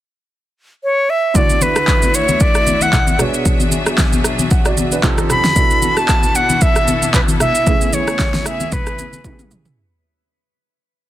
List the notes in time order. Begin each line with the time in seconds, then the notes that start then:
0.84 C#5
1.10 E5
1.34 D2 D3 A3 E4 F#4 D5 E5, kick, low conga, shaker
1.49 high conga, shaker
1.61 B4, high conga, shaker
1.76 cross-stick, shaker
1.88 kick, clap, shaker
2.02 high conga, shaker
2.14 C#5, shaker
2.28 high conga, shaker
2.40 D5, kick, shaker
2.55 cross-stick, shaker
2.67 high conga, shaker
2.81 F#5, high conga, shaker
2.93 kick, clap, low conga, shaker
3.07 high conga, shaker
3.18 B2 F#3 B3 D4 G#4 C#5, cross-stick, low conga, shaker
3.34 shaker
3.46 kick, low conga, shaker
3.60 high conga, shaker
3.71 high conga, shaker
3.86 cross-stick, shaker
3.98 kick, snare, clap, shaker
4.13 high conga, shaker
4.24 cross-stick, shaker
4.39 high conga, shaker
4.51 F#5, kick, shaker
4.65 F#4 D5, cross-stick, shaker
4.77 high conga, shaker
4.91 D4 B4, high conga, shaker
5.03 F2 F3 C4 D#4 G4 A4, kick, clap, low conga, shaker
5.18 cross-stick, high conga, shaker
5.30 B5, cross-stick, low conga, shaker
5.44 snare, shaker
5.55 B2 B3 D4 E4 F#4 A4, kick, low conga, shaker
5.70 high conga, shaker
5.82 high conga, shaker
5.97 A5, cross-stick, shaker
6.08 kick, clap, shaker
6.23 high conga, shaker
6.35 F#5, shaker
6.49 high conga, shaker
6.61 E5, kick, shaker
6.76 cross-stick, shaker
6.88 high conga, shaker
7.02 high conga, shaker
7.14 B4, kick, clap, low conga, shaker
7.28 high conga, shaker
7.40 E5, cross-stick, low conga, shaker
7.55 shaker
7.66 C#3 A3 B3 E4 G#4, kick, low conga, shaker
7.81 high conga, shaker
7.93 C#5, high conga, shaker
8.08 cross-stick, shaker
8.19 kick, snare, clap, shaker
8.34 snare, high conga, shaker
8.46 E5, cross-stick, shaker
8.60 high conga, shaker
8.72 B4, kick, low conga, shaker
8.87 cross-stick, shaker
8.99 high conga, shaker
9.13 high conga, shaker
9.24 C#3 A3 B3 E4 G4, kick, high tom, low conga, shaker
9.32 G#4
9.39 mid tom, high conga, shaker
9.51 mid tom, low conga, shaker
9.65 floor tom, shaker